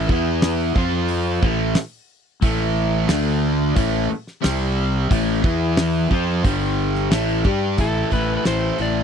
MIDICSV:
0, 0, Header, 1, 8, 480
1, 0, Start_track
1, 0, Key_signature, 0, "minor"
1, 0, Tempo, 669643
1, 1740, Time_signature, 4, 2, 24, 8
1, 6476, End_track
2, 0, Start_track
2, 0, Title_t, "Electric slide guitar"
2, 0, Program_c, 0, 29
2, 5596, Note_on_c, 0, 69, 78
2, 5824, Note_off_c, 0, 69, 0
2, 5827, Note_on_c, 0, 71, 83
2, 5990, Note_off_c, 0, 71, 0
2, 5998, Note_on_c, 0, 71, 61
2, 6056, Note_off_c, 0, 71, 0
2, 6070, Note_on_c, 0, 72, 89
2, 6315, Note_off_c, 0, 72, 0
2, 6321, Note_on_c, 0, 74, 90
2, 6476, Note_off_c, 0, 74, 0
2, 6476, End_track
3, 0, Start_track
3, 0, Title_t, "Overdriven electric guitar"
3, 0, Program_c, 1, 29
3, 73, Note_on_c, 1, 52, 88
3, 77, Note_on_c, 1, 59, 104
3, 77, Note_on_c, 1, 64, 114
3, 539, Note_off_c, 1, 52, 0
3, 542, Note_off_c, 1, 59, 0
3, 542, Note_off_c, 1, 64, 0
3, 545, Note_on_c, 1, 53, 94
3, 547, Note_on_c, 1, 60, 99
3, 551, Note_on_c, 1, 65, 106
3, 1015, Note_off_c, 1, 53, 0
3, 1017, Note_off_c, 1, 60, 0
3, 1019, Note_off_c, 1, 65, 0
3, 1020, Note_on_c, 1, 45, 100
3, 1027, Note_on_c, 1, 52, 94
3, 1030, Note_on_c, 1, 57, 91
3, 1253, Note_off_c, 1, 45, 0
3, 1257, Note_off_c, 1, 52, 0
3, 1258, Note_off_c, 1, 57, 0
3, 1738, Note_on_c, 1, 45, 102
3, 1742, Note_on_c, 1, 52, 103
3, 1744, Note_on_c, 1, 57, 119
3, 2209, Note_off_c, 1, 57, 0
3, 2211, Note_off_c, 1, 45, 0
3, 2214, Note_off_c, 1, 52, 0
3, 2217, Note_on_c, 1, 57, 91
3, 2218, Note_on_c, 1, 50, 92
3, 2224, Note_on_c, 1, 62, 97
3, 2691, Note_off_c, 1, 57, 0
3, 2692, Note_off_c, 1, 50, 0
3, 2694, Note_off_c, 1, 62, 0
3, 2696, Note_on_c, 1, 45, 87
3, 2697, Note_on_c, 1, 52, 85
3, 2704, Note_on_c, 1, 57, 101
3, 2925, Note_off_c, 1, 45, 0
3, 2931, Note_off_c, 1, 52, 0
3, 2935, Note_off_c, 1, 57, 0
3, 3168, Note_on_c, 1, 48, 88
3, 3173, Note_on_c, 1, 55, 98
3, 3173, Note_on_c, 1, 60, 95
3, 3647, Note_off_c, 1, 48, 0
3, 3649, Note_off_c, 1, 55, 0
3, 3649, Note_off_c, 1, 60, 0
3, 3657, Note_on_c, 1, 45, 102
3, 3663, Note_on_c, 1, 52, 107
3, 3666, Note_on_c, 1, 57, 105
3, 3891, Note_off_c, 1, 45, 0
3, 3891, Note_off_c, 1, 52, 0
3, 3896, Note_off_c, 1, 57, 0
3, 3900, Note_on_c, 1, 52, 108
3, 3903, Note_on_c, 1, 59, 95
3, 3909, Note_on_c, 1, 64, 104
3, 4373, Note_off_c, 1, 52, 0
3, 4375, Note_off_c, 1, 59, 0
3, 4375, Note_on_c, 1, 53, 97
3, 4378, Note_off_c, 1, 64, 0
3, 4380, Note_on_c, 1, 60, 94
3, 4382, Note_on_c, 1, 65, 107
3, 4611, Note_off_c, 1, 53, 0
3, 4613, Note_off_c, 1, 60, 0
3, 4614, Note_off_c, 1, 65, 0
3, 4616, Note_on_c, 1, 50, 86
3, 4617, Note_on_c, 1, 43, 93
3, 4623, Note_on_c, 1, 55, 88
3, 5090, Note_off_c, 1, 50, 0
3, 5093, Note_off_c, 1, 43, 0
3, 5093, Note_on_c, 1, 45, 73
3, 5094, Note_off_c, 1, 55, 0
3, 5097, Note_on_c, 1, 52, 77
3, 5098, Note_on_c, 1, 57, 83
3, 5330, Note_off_c, 1, 45, 0
3, 5331, Note_off_c, 1, 52, 0
3, 5333, Note_off_c, 1, 57, 0
3, 5334, Note_on_c, 1, 55, 80
3, 5338, Note_on_c, 1, 62, 85
3, 5342, Note_on_c, 1, 67, 91
3, 5571, Note_off_c, 1, 55, 0
3, 5573, Note_off_c, 1, 62, 0
3, 5575, Note_off_c, 1, 67, 0
3, 5575, Note_on_c, 1, 45, 87
3, 5577, Note_on_c, 1, 52, 105
3, 5580, Note_on_c, 1, 60, 98
3, 5584, Note_on_c, 1, 64, 108
3, 5585, Note_on_c, 1, 69, 101
3, 5808, Note_off_c, 1, 45, 0
3, 5811, Note_on_c, 1, 45, 87
3, 5812, Note_off_c, 1, 60, 0
3, 5813, Note_off_c, 1, 52, 0
3, 5815, Note_on_c, 1, 52, 82
3, 5815, Note_on_c, 1, 60, 79
3, 5816, Note_off_c, 1, 64, 0
3, 5819, Note_on_c, 1, 64, 93
3, 5820, Note_off_c, 1, 69, 0
3, 5822, Note_on_c, 1, 69, 98
3, 6049, Note_off_c, 1, 45, 0
3, 6052, Note_off_c, 1, 52, 0
3, 6052, Note_on_c, 1, 45, 93
3, 6054, Note_on_c, 1, 52, 95
3, 6057, Note_off_c, 1, 60, 0
3, 6057, Note_off_c, 1, 69, 0
3, 6058, Note_off_c, 1, 64, 0
3, 6060, Note_on_c, 1, 60, 82
3, 6060, Note_on_c, 1, 69, 105
3, 6061, Note_on_c, 1, 64, 96
3, 6291, Note_off_c, 1, 45, 0
3, 6294, Note_on_c, 1, 45, 76
3, 6296, Note_off_c, 1, 52, 0
3, 6296, Note_off_c, 1, 60, 0
3, 6299, Note_off_c, 1, 64, 0
3, 6299, Note_on_c, 1, 52, 74
3, 6299, Note_on_c, 1, 60, 80
3, 6302, Note_on_c, 1, 64, 77
3, 6304, Note_off_c, 1, 69, 0
3, 6307, Note_on_c, 1, 69, 89
3, 6476, Note_off_c, 1, 45, 0
3, 6476, Note_off_c, 1, 52, 0
3, 6476, Note_off_c, 1, 60, 0
3, 6476, Note_off_c, 1, 64, 0
3, 6476, Note_off_c, 1, 69, 0
3, 6476, End_track
4, 0, Start_track
4, 0, Title_t, "Overdriven electric guitar"
4, 0, Program_c, 2, 29
4, 5584, Note_on_c, 2, 57, 91
4, 5828, Note_off_c, 2, 57, 0
4, 5831, Note_on_c, 2, 57, 86
4, 6066, Note_off_c, 2, 57, 0
4, 6069, Note_on_c, 2, 57, 84
4, 6303, Note_off_c, 2, 57, 0
4, 6306, Note_on_c, 2, 57, 88
4, 6476, Note_off_c, 2, 57, 0
4, 6476, End_track
5, 0, Start_track
5, 0, Title_t, "Fingered electric bass"
5, 0, Program_c, 3, 33
5, 66, Note_on_c, 3, 40, 98
5, 515, Note_off_c, 3, 40, 0
5, 544, Note_on_c, 3, 41, 98
5, 994, Note_off_c, 3, 41, 0
5, 1023, Note_on_c, 3, 33, 83
5, 1245, Note_off_c, 3, 33, 0
5, 1736, Note_on_c, 3, 33, 90
5, 2189, Note_off_c, 3, 33, 0
5, 2216, Note_on_c, 3, 38, 98
5, 2669, Note_off_c, 3, 38, 0
5, 2702, Note_on_c, 3, 33, 82
5, 2924, Note_off_c, 3, 33, 0
5, 3190, Note_on_c, 3, 36, 93
5, 3636, Note_off_c, 3, 36, 0
5, 3663, Note_on_c, 3, 33, 85
5, 3885, Note_off_c, 3, 33, 0
5, 3899, Note_on_c, 3, 40, 99
5, 4351, Note_off_c, 3, 40, 0
5, 4382, Note_on_c, 3, 41, 103
5, 4605, Note_off_c, 3, 41, 0
5, 4618, Note_on_c, 3, 31, 94
5, 5071, Note_off_c, 3, 31, 0
5, 5100, Note_on_c, 3, 33, 93
5, 5324, Note_off_c, 3, 33, 0
5, 5338, Note_on_c, 3, 43, 92
5, 5564, Note_off_c, 3, 43, 0
5, 5582, Note_on_c, 3, 33, 85
5, 5754, Note_off_c, 3, 33, 0
5, 5821, Note_on_c, 3, 33, 91
5, 5993, Note_off_c, 3, 33, 0
5, 6066, Note_on_c, 3, 33, 82
5, 6237, Note_off_c, 3, 33, 0
5, 6303, Note_on_c, 3, 33, 82
5, 6475, Note_off_c, 3, 33, 0
5, 6476, End_track
6, 0, Start_track
6, 0, Title_t, "Muted fingered electric bass strokes"
6, 2952, Note_on_c, 9, 29, 40
6, 3023, Note_off_c, 9, 29, 0
6, 6476, End_track
7, 0, Start_track
7, 0, Title_t, "Muted overdriven electric guitar strokes"
7, 2934, Note_on_c, 9, 29, 61
7, 3005, Note_off_c, 9, 29, 0
7, 6476, End_track
8, 0, Start_track
8, 0, Title_t, "Drums"
8, 66, Note_on_c, 9, 36, 105
8, 137, Note_off_c, 9, 36, 0
8, 301, Note_on_c, 9, 46, 56
8, 303, Note_on_c, 9, 38, 106
8, 372, Note_off_c, 9, 46, 0
8, 374, Note_off_c, 9, 38, 0
8, 542, Note_on_c, 9, 36, 102
8, 614, Note_off_c, 9, 36, 0
8, 776, Note_on_c, 9, 46, 60
8, 848, Note_off_c, 9, 46, 0
8, 1022, Note_on_c, 9, 36, 106
8, 1094, Note_off_c, 9, 36, 0
8, 1253, Note_on_c, 9, 46, 51
8, 1255, Note_on_c, 9, 38, 104
8, 1325, Note_off_c, 9, 46, 0
8, 1327, Note_off_c, 9, 38, 0
8, 1735, Note_on_c, 9, 46, 56
8, 1738, Note_on_c, 9, 36, 115
8, 1807, Note_off_c, 9, 46, 0
8, 1810, Note_off_c, 9, 36, 0
8, 2212, Note_on_c, 9, 46, 62
8, 2214, Note_on_c, 9, 38, 101
8, 2284, Note_off_c, 9, 46, 0
8, 2286, Note_off_c, 9, 38, 0
8, 2696, Note_on_c, 9, 46, 61
8, 2699, Note_on_c, 9, 36, 105
8, 2767, Note_off_c, 9, 46, 0
8, 2771, Note_off_c, 9, 36, 0
8, 3063, Note_on_c, 9, 38, 30
8, 3135, Note_off_c, 9, 38, 0
8, 3181, Note_on_c, 9, 46, 58
8, 3184, Note_on_c, 9, 38, 95
8, 3253, Note_off_c, 9, 46, 0
8, 3255, Note_off_c, 9, 38, 0
8, 3662, Note_on_c, 9, 36, 112
8, 3665, Note_on_c, 9, 46, 60
8, 3734, Note_off_c, 9, 36, 0
8, 3737, Note_off_c, 9, 46, 0
8, 3900, Note_on_c, 9, 36, 106
8, 3971, Note_off_c, 9, 36, 0
8, 4137, Note_on_c, 9, 46, 58
8, 4139, Note_on_c, 9, 38, 119
8, 4208, Note_off_c, 9, 46, 0
8, 4210, Note_off_c, 9, 38, 0
8, 4379, Note_on_c, 9, 36, 90
8, 4451, Note_off_c, 9, 36, 0
8, 4620, Note_on_c, 9, 36, 111
8, 4623, Note_on_c, 9, 46, 60
8, 4692, Note_off_c, 9, 36, 0
8, 4695, Note_off_c, 9, 46, 0
8, 4984, Note_on_c, 9, 38, 31
8, 5055, Note_off_c, 9, 38, 0
8, 5099, Note_on_c, 9, 46, 49
8, 5101, Note_on_c, 9, 38, 101
8, 5171, Note_off_c, 9, 46, 0
8, 5173, Note_off_c, 9, 38, 0
8, 5339, Note_on_c, 9, 36, 103
8, 5411, Note_off_c, 9, 36, 0
8, 5575, Note_on_c, 9, 46, 62
8, 5580, Note_on_c, 9, 36, 106
8, 5646, Note_off_c, 9, 46, 0
8, 5651, Note_off_c, 9, 36, 0
8, 5814, Note_on_c, 9, 46, 47
8, 5819, Note_on_c, 9, 36, 71
8, 5886, Note_off_c, 9, 46, 0
8, 5891, Note_off_c, 9, 36, 0
8, 6057, Note_on_c, 9, 46, 57
8, 6059, Note_on_c, 9, 38, 108
8, 6129, Note_off_c, 9, 46, 0
8, 6131, Note_off_c, 9, 38, 0
8, 6295, Note_on_c, 9, 46, 44
8, 6367, Note_off_c, 9, 46, 0
8, 6476, End_track
0, 0, End_of_file